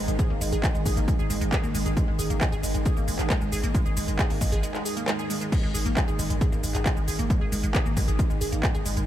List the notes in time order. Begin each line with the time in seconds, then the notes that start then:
Already playing: G#2 D#3
0.08 G#1 G#3, closed hi-hat, shaker
0.19 G#4, kick, closed hi-hat, shaker
0.30 G#1 A#3
0.41 G#1 G#3, open hi-hat, shaker
0.52 G#1 G#4, closed hi-hat, shaker
0.63 G#3, kick, clap, closed hi-hat, shaker
0.75 G#1 G#3, shaker
0.86 G#1 G#4, kick, open hi-hat, shaker
0.97 G#1 A#3, closed hi-hat, shaker
1.08 G#3, kick, closed hi-hat, shaker
1.19 G#1 G#4, shaker
1.30 G#1 G#3, open hi-hat, shaker
1.41 G#1 G#3, closed hi-hat, shaker
1.52 G#4, kick, clap, closed hi-hat, shaker
1.63 G#1 A#3, shaker
1.74 G#1 G#3, open hi-hat, shaker
1.86 G#1 G#4, closed hi-hat, shaker
1.97 G#3, kick, closed hi-hat, shaker
2.08 G#1 G#3
2.19 G#1 G#4, open hi-hat, shaker
2.30 G#1 A#3, closed hi-hat, shaker
2.41 G#3, kick, clap, closed hi-hat, shaker
2.52 G#1 G#4, shaker
2.63 G#1 G#3, open hi-hat, shaker
2.74 G#1 G#3, closed hi-hat, shaker
2.85 G#4, kick, closed hi-hat, shaker
2.97 G#1 A#3, shaker
3.08 G#1 G#3, open hi-hat, shaker
3.19 G#1 G#4, clap, closed hi-hat, shaker
3.30 G#3, kick, clap, closed hi-hat, shaker
3.41 G#1 G#3, shaker
3.52 G#1 G#4, open hi-hat, shaker
3.63 G#1 A#3, closed hi-hat, shaker
3.74 G#3, kick, closed hi-hat, shaker
3.86 G#1 G#4, shaker
3.97 G#1 G#3, open hi-hat, shaker
4.08 G#1 G#3, closed hi-hat, shaker
4.19 G#4, kick, clap, closed hi-hat, shaker
4.30 G#1 A#3, open hi-hat, shaker
4.41 G#1 G#3, kick, open hi-hat, shaker
4.52 G#1 G#4, closed hi-hat, shaker
4.63 G#3, closed hi-hat, shaker
4.74 G#3, clap, shaker
4.85 G#4, open hi-hat, shaker
4.97 A#3, closed hi-hat, shaker
5.08 G#3, clap, closed hi-hat, shaker
5.19 G#4, shaker
5.30 G#3, open hi-hat, shaker
5.41 G#3, closed hi-hat, shaker
5.52 G#2 D#3 G#3, kick, closed hi-hat, crash, shaker
5.63 G#1 G#3
5.74 G#1 G#4, open hi-hat, shaker
5.86 G#1 A#3, closed hi-hat, shaker
5.97 G#3, kick, clap, closed hi-hat, shaker
6.08 G#1 G#4, shaker
6.19 G#1 G#3, open hi-hat, shaker
6.30 G#1 G#3, closed hi-hat, shaker
6.41 G#4, kick, closed hi-hat, shaker
6.52 G#1 A#3, shaker
6.63 G#1 G#3, open hi-hat, shaker
6.75 G#1 G#4, clap, closed hi-hat, shaker
6.86 G#3, kick, clap, closed hi-hat, shaker
6.97 G#1 G#3, shaker
7.08 G#1 G#4, open hi-hat, shaker
7.19 G#1 A#3, closed hi-hat, shaker
7.30 G#3, kick, closed hi-hat, shaker
7.41 G#1 G#4
7.52 G#1 G#3, open hi-hat, shaker
7.63 G#1 G#3, closed hi-hat, shaker
7.74 G#4, kick, clap, closed hi-hat, shaker
7.86 G#1 A#3, shaker
7.97 G#1 G#3, kick, open hi-hat, shaker
8.08 G#1 G#4, closed hi-hat, shaker
8.19 G#3, kick, closed hi-hat, shaker
8.30 G#1 G#3, shaker
8.41 G#1 G#4, open hi-hat, shaker
8.52 G#1 A#3, closed hi-hat, shaker
8.63 G#3, kick, clap, closed hi-hat, shaker
8.75 G#1 G#4, shaker
8.86 G#1 G#3, open hi-hat, shaker
8.97 G#1 G#3, closed hi-hat, shaker